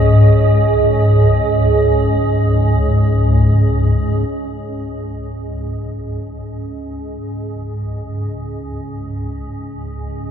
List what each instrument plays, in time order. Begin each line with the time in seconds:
Already playing: synth drone C#2 G#2, ambient pad C#4 G#4 C#5
4.29 synth drone C#2 G#2, ambient pad C#4
5.85 ambient pad G#4
5.94 ambient pad C#5